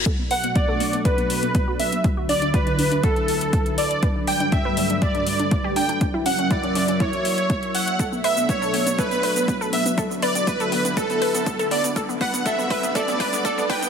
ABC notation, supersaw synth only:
X:1
M:4/4
L:1/8
Q:1/4=121
K:Bm
V:1 name="Supersaw synth"
z f d2 B3 e | z d B2 A3 d | z g e2 d3 g | z f d2 c3 f |
z e c2 B3 e | z d B2 A3 d | z f e2 d3 g |]